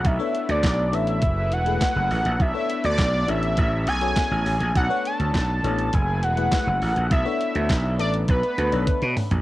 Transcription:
<<
  \new Staff \with { instrumentName = "Analog synth lead" } { \time 4/4 \key b \dorian \tempo 4 = 102 e''8. d''8. e''4 fis''4. | e''8. d''8. e''4 gis''4. | fis''8 a''4. gis''8 fis''4. | e''4. d''8 b'4. r8 | }
  \new Staff \with { instrumentName = "FM electric piano" } { \time 4/4 \key b \dorian r16 <b d' a' cis''>8. r8 <b d' a' cis''>8 r8. <a e' gis' b'>4 r16 | r16 <b d' a' cis''>8. r8 <b d' a' cis''>8 r8. <b fis' a' cis''>4 r16 | r16 <b d' a' cis''>8. r8 <b d' a' cis''>8 r8. <a e' gis' b'>4 r16 | r16 <b d' a' cis''>8. r8 <b d' a' e''>8 r8. <b d' a' cis''>4 r16 | }
  \new Staff \with { instrumentName = "Analog synth pad" } { \time 4/4 \key b \dorian <a b d'>2 <fis a e' gis' b'>2 | <a b d'>2 <fis a cis'>2 | <b d'>2 <fis a e' gis' b'>2 | <a b d'>1 | }
  \new Staff \with { instrumentName = "Slap bass" } { \clef bass \time 4/4 \key b \dorian b,,16 r8 d,16 b,,8 a,,8 fis,,8 e,,8 r16 fis,,16 a,,16 ais,,16 | b,,16 r8 d,16 b,,8 a,,8 a,,8 b,,8 r16 a,,16 a,,16 ais,,16 | b,,16 r8 d,16 b,,8 a,,8 fis,,8 e,,8 r16 fis,,16 a,,16 ais,,16 | b,,16 r8 d,16 b,,8 a,,8 b,,16 r16 d,16 b,,16 r16 b,16 r16 ais,,16 | }
  \new DrumStaff \with { instrumentName = "Drums" } \drummode { \time 4/4 <hh bd>8 hh16 hh16 <hc hh bd sn>8 hh16 hh16 <hh bd>8 hh16 hh16 <hc hh bd sn>8 hho16 hh16 | <hh bd>8 hh16 hh16 <hc hh bd sn>8 hh16 hh16 <hh bd>8 hh16 hh16 <hc hh bd sn>8 hho16 hh16 | <hh bd>8 hh16 hh16 <hc hh bd sn>8 hh16 hh16 <hh bd>8 hh16 hh16 <hc hh bd sn>8 hho16 hh16 | <hh bd>8 hh16 hh16 <hc hh bd sn>8 hh16 hh16 <hh bd>16 hh16 hh16 hh16 <hh bd tommh>16 hh16 <hho toml>16 <hh tomfh>16 | }
>>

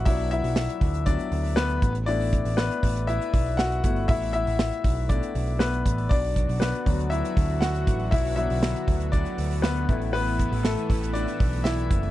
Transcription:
<<
  \new Staff \with { instrumentName = "Grand piano" } { \time 4/4 \key a \dorian \tempo 4 = 119 <e' e''>8 <e' e''>4. d''4 <b b'>8. r16 | <d' d''>4 <b b'>4 <e' e''>4 <fis' fis''>4 | <e' e''>8 <e' e''>4. <d' d''>4 <b b'>8. r16 | <d' d''>4 <b b'>4 <e' e''>4 <fis' fis''>4 |
<e' e''>8 <e' e''>4. <d' d''>4 <b b'>8. r16 | <b b'>4 <a a'>4 <d' d''>4 <e' e''>4 | }
  \new Staff \with { instrumentName = "Grand piano" } { \time 4/4 \key a \dorian <fis b d'>8 r4. <fis b d'>8 r4. | <a b e'>8 r2. <a b e'>8~ | <a b e'>4 r4 <a b e'>8 r4. | r4. <fis b d'>4. r4 |
r8 <fis b d'>4. r4. <a b e'>8~ | <a b e'>4 r2. | }
  \new Staff \with { instrumentName = "Analog synth pad" } { \clef bass \time 4/4 \key a \dorian << { r1 | r1 | r1 | <d fis fis'>1~ |
<d fis fis'>2.~ <d fis fis'>8 <a, e e'>8~ | <a, e e'>1 | } \\ { r1 | r1 | r1 | b1~ |
b1~ | b1 | } >> }
  \new Staff \with { instrumentName = "Picked electric bass" } { \clef bass \time 4/4 \key a \dorian b,,8. b,,8 r16 d,8. r16 d,4 a,,8~ | a,,8. a,,8 r16 a,,8. r16 b,,4 g,,8 | a,,8. a,,8 r16 b,,8. r16 b,,4 a,,8 | b,,8. b,,8 r16 d,8. r16 d,4 a,,8 |
b,,8. b,,8 r16 d,8. r16 d,4 a,,8~ | a,,8. a,,8 r16 a,,8. r16 b,,4 fis,,8 | }
  \new DrumStaff \with { instrumentName = "Drums" } \drummode { \time 4/4 <hho hhp bd>16 <hho hhp>16 <hho hhp>16 <hho hhp>16 <hho hhp sn>16 <hho hhp>16 <hho hhp bd>16 <hho hhp>16 <hho hhp bd>16 <hho hhp>16 <hho hhp>16 <hho hhp>16 <hho hhp sn>16 <hho hhp>16 <hho hhp bd>16 <hho hhp>16 | <hho hhp>16 <hho hhp>16 <hho hhp bd>16 <hho hhp>16 <hho hhp sn>16 <hho hhp>16 <hho hhp bd>16 <hho hhp>16 <hho hhp>16 hhp16 <hho hhp bd>16 hho16 <hho hhp sn>16 hhp16 <hho hhp bd>16 hho16 | <hho hhp bd>16 <hho hhp>16 <hho hhp>16 <hho hhp>16 <hho hhp sn>16 hhp16 <hho hhp bd>16 hho16 <hho hhp bd>16 hhp16 <hho hhp>16 hho16 <hho hhp sn>16 hhp16 <hho hhp bd>16 hho16 | <hho hhp bd>16 <hho hhp>16 <hho hhp bd>16 <hho hhp>16 <hho hhp sn>16 <hho hhp>16 <hho hhp bd>16 <hho hhp>16 <hho hhp>16 hhp16 <hho hhp bd>16 hho16 <hho hhp sn>16 hhp16 <hho hhp bd>16 hho16 |
<hho hhp bd>16 <hho hhp>16 <hho hhp>16 <hho hhp>16 <hho hhp sn>16 <hho hhp>16 <hho hhp bd>16 <hho hhp>16 <hho hhp bd>16 <hho hhp>16 <hho hhp>16 <hho hhp>16 <hho hhp sn>16 hhp16 <hho hhp bd>16 hho16 | <hho hhp>16 <hho hhp>16 <hho hhp bd>16 <hho hhp>16 <hho hhp sn>16 <hho hhp>16 <hho hhp bd>16 <hho hhp>16 <hho hhp>16 <hho hhp>16 <hho hhp bd>16 <hho hhp>16 <hho hhp sn>16 hhp16 <hho hhp bd>16 hho16 | }
>>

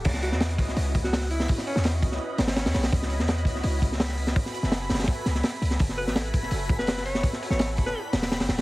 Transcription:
<<
  \new Staff \with { instrumentName = "Synth texture" } { \time 4/4 \key cis \minor \tempo 4 = 167 b''1~ | b''1~ | b''1~ | b''1~ |
b''1~ | b''1 | }
  \new Staff \with { instrumentName = "Alto saxophone" } { \time 4/4 \key cis \minor r8 fis'16 fis'16 r4. r16 fis'8. e'8 | r8 cis'8 r4. r16 cis'4 r16 | r1 | r1 |
r8 b'16 b'16 r4. r16 b'8. cis''8 | r8. cis''8 r8 b'16 r2 | }
  \new Staff \with { instrumentName = "808-style bass" } { \clef bass \time 4/4 \key cis \minor cis,8. e,8. cis,8 cis,2 | r8. e,8. cis,8 r8 gis,,8. e,16 b,,8 | cis,8. e,8. cis,8 cis,2 | r8. fis,,8. fis,,8 r8 cis,8 r8 cis,8 |
fis,,8. a,,8. fis,,8 fis,,2 | r8. a,,8. fis,,8 r8 e,,8. g,,16 d,,8 | }
  \new DrumStaff \with { instrumentName = "Drums" } \drummode { \time 4/4 <cymc hho bd>16 sn16 hho16 sn16 <hho sn>16 hh16 <hho bd>16 sn16 hho8 <hho bd>16 sn16 <hho sn>16 sn16 hho16 sn16 | <hho bd>16 sn16 hho16 sn16 <hho sn>8 <hho bd>16 sn16 r8 <hho sn>16 <hho sn>16 <hho sn>16 <hho sn>16 <hho sn>16 <hho sn>16 | <hho bd>16 sn16 hho16 sn16 <hho sn>16 hh16 <hho bd>16 sn16 hho8 <hho bd>16 sn16 <hho sn>16 sn16 hho16 sn16 | <hho bd>16 sn16 hho16 sn16 <hho sn>8 <hho sn>32 <hho sn>32 <hho sn>32 <hho sn>32 <hho bd>8 <hho sn>16 sn16 <hho sn>8 hho16 sn16 |
<hho bd>16 sn16 hho16 sn16 <hho sn>16 hh16 <hho bd>16 sn16 hho8 <hho bd>16 sn16 <hho sn>16 sn16 hho16 sn16 | <hho bd>16 sn16 hho16 sn16 <hho sn>8 <hho bd>16 sn16 r8 <hho sn>16 <hho sn>16 <hho sn>16 <hho sn>16 <hho sn>16 <hho sn>16 | }
>>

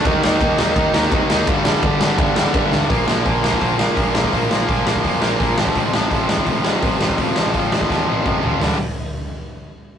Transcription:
<<
  \new Staff \with { instrumentName = "Distorted electric guitar" } { \clef bass \time 4/4 \key bes \major \tempo 4 = 168 <ees bes ees'>8 <ees bes ees'>8 <ees bes ees'>8 <ees bes ees'>8 <ees bes ees'>8 <ees bes ees'>8 <ees bes ees'>8 <ees bes ees'>8 | <g, d g>8 <g, d g>8 <g, d g>8 <g, d g>8 <g, d g>8 <g, d g>8 <g, d g>8 <g, d g>8 | <bes, f bes>8 <bes, f bes>8 <bes, f bes>8 <bes, f bes>8 <bes, f bes>8 <bes, f bes>8 <bes, f bes>8 <bes, f bes>8 | <bes, f bes>8 <bes, f bes>8 <bes, f bes>8 <bes, f bes>8 <bes, f bes>8 <bes, f bes>8 <bes, f bes>8 <f, c f>8 |
<f, c f>8 <f, c f>8 <f, c f>8 <f, c f>8 <f, c f>8 <f, c f>8 <f, c f>8 <f, c f>8 | <f, c f>8 <f, c f>8 <f, c f>8 <f, c f>8 <f, c f>8 <f, c f>8 <f, c f>8 <f, c f>8 | <g, d g>8 r2. r8 | }
  \new Staff \with { instrumentName = "Distorted electric guitar" } { \clef bass \time 4/4 \key bes \major <ees bes ees'>8 <ees bes ees'>8 <ees bes ees'>8 <ees bes ees'>8 <ees bes ees'>8 <ees bes ees'>8 <ees bes ees'>8 <ees bes ees'>8 | <g, d g>8 <g, d g>8 <g, d g>8 <g, d g>8 <g, d g>8 <g, d g>8 <g, d g>8 <g, d g>8 | <bes, f bes>8 <bes, f bes>8 <bes, f bes>8 <bes, f bes>8 <bes, f bes>8 <bes, f bes>8 <bes, f bes>8 <bes, f bes>8 | <bes, f bes>8 <bes, f bes>8 <bes, f bes>8 <bes, f bes>8 <bes, f bes>8 <bes, f bes>8 <bes, f bes>8 <f, c f>8 |
<f, c f>8 <f, c f>8 <f, c f>8 <f, c f>8 <f, c f>8 <f, c f>8 <f, c f>8 <f, c f>8 | <f, c f>8 <f, c f>8 <f, c f>8 <f, c f>8 <f, c f>8 <f, c f>8 <f, c f>8 <f, c f>8 | <g, d g>8 r2. r8 | }
  \new Staff \with { instrumentName = "Picked electric bass" } { \clef bass \time 4/4 \key bes \major ees,8 ees,8 ees,8 ees,8 ees,8 ees,8 c8 ees,8 | g,,4 g,,4 g,,8 g,,8 g,,8 d,8 | bes,,8 bes,,8 bes,,8 bes,,8 bes,,4 bes,,8 bes,,8 | bes,,8 bes,,8 bes,,8 bes,,8 f,8 bes,,8 bes,,8 a,,8 |
a,,8 a,,8 a,,8 a,,8 a,,4 a,,8 a,,8 | a,,8 a,,8 a,,8 a,,8 ees,8 a,,8 a,,8 a,,8 | g,,8 r2. r8 | }
  \new DrumStaff \with { instrumentName = "Drums" } \drummode { \time 4/4 <bd cymr>8 sn8 <bd cymr>8 sn8 <bd cymr>8 sn8 <bd cymr>8 sn8 | <bd cymr>8 sn8 <bd cymr>8 sn8 <bd cymr>8 sn8 <bd cymr>8 sn8 | <hho bd>8 sn8 <hho bd>8 sn16 bd16 <hho bd>8 sn8 <hho bd>8 sn16 bd16 | <hho bd>8 sn8 <hho bd>8 sn16 bd16 <hho bd>8 sn8 <hho bd>8 sn16 bd16 |
<hho bd>8 sn8 <hho bd>8 sn16 bd16 <hho bd>8 sn8 <hho bd>8 sn16 bd16 | <hho bd>8 sn8 <hho bd>8 sn16 bd16 <bd sn>4 <bd toml>8 tomfh8 | <hho sn tomfh>4 r4 r4 r4 | }
>>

